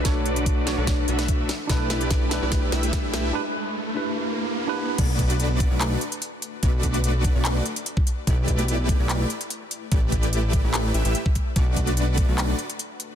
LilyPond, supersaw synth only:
\new Staff \with { instrumentName = "Supersaw synth" } { \time 4/4 \key b \minor \tempo 4 = 146 <a d' fis' b' d''>4.~ <a d' fis' b' d''>16 <a d' fis' b' d''>8. <a d' fis' b' e''>4 r8 | <a e' g' b' d''>4.~ <a e' g' b' d''>16 <a e' g' b' d''>8. <a e' g' b' e''>4. | r1 | <a d' fis' b' d''>4.~ <a d' fis' b' d''>16 <a d' fis' b' d''>8. r4. |
<a d' fis' b' d''>4.~ <a d' fis' b' d''>16 <a d' fis' b' d''>8. r4. | <a e' g' b' d''>4.~ <a e' g' b' d''>16 <a e' g' b' d''>8. r4. | <a e' g' b' d''>4.~ <a e' g' b' d''>16 <a e' g' b' d''>8. <a e' g' b' e''>16 <a e' g' b' e''>16 r4 | <a d' fis' b' d''>4.~ <a d' fis' b' d''>16 <a d' fis' b' d''>8. r4. | }